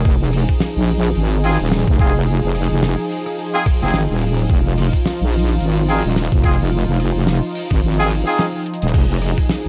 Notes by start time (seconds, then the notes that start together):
Already playing: F3 D#4
0.05 F1 G#4, kick, open hi-hat
0.20 open hi-hat
0.33 cross-stick, open hi-hat
0.49 kick, open hi-hat
0.60 snare, open hi-hat
0.76 A#1, open hi-hat
0.88 open hi-hat
1.04 cross-stick, open hi-hat
1.15 G#1, open hi-hat
1.32 open hi-hat
1.44 C4 D#4 F4 G#4, open hi-hat
1.60 D#1, open hi-hat
1.72 snare, open hi-hat
1.88 F1, kick, open hi-hat
1.99 C4 D#4 F4 G#4, kick, cross-stick, open hi-hat
2.15 open hi-hat
2.27 open hi-hat
2.43 F1, open hi-hat
2.55 cross-stick, open hi-hat
2.71 F1, open hi-hat
2.83 snare, open hi-hat
2.99 open hi-hat
3.11 open hi-hat
3.26 cross-stick, open hi-hat
3.39 open hi-hat
3.54 C4 D#4 F4 G#4, open hi-hat
3.66 kick, cross-stick, open hi-hat
3.82 F1 C4 D#4 F4 G#4, open hi-hat
3.94 G#1, snare
4.10 D#1, open hi-hat
4.21 open hi-hat
4.38 open hi-hat
4.49 F1 F4, kick, open hi-hat
4.66 open hi-hat
4.78 cross-stick, open hi-hat
4.93 kick, open hi-hat
5.06 snare, open hi-hat
5.21 A#1, open hi-hat
5.33 open hi-hat
5.48 cross-stick, open hi-hat
5.61 G#1, open hi-hat
5.77 open hi-hat
5.89 C4 D#4 F4 G#4, open hi-hat
6.04 D#1, open hi-hat
6.16 snare, open hi-hat
6.32 F1, kick, open hi-hat
6.44 C4 D#4 F4 G#4, kick, cross-stick, open hi-hat
6.60 open hi-hat
6.72 open hi-hat
6.88 F1, open hi-hat
7.00 cross-stick, open hi-hat
7.15 F1, open hi-hat
7.27 snare, open hi-hat
7.44 open hi-hat
7.55 open hi-hat
7.70 G#1, kick, cross-stick, open hi-hat
7.82 G#1, open hi-hat
7.99 C4 D#4 F4 G#4, open hi-hat
8.10 cross-stick, open hi-hat
8.26 C4 D#4 F4 G#4, open hi-hat
8.38 snare, open hi-hat
8.54 open hi-hat
8.66 closed hi-hat
8.74 closed hi-hat
8.82 D#1, closed hi-hat
8.88 closed hi-hat
8.94 F1 G#4, kick, open hi-hat, crash
9.10 open hi-hat
9.22 cross-stick, open hi-hat
9.38 kick, open hi-hat
9.49 snare, open hi-hat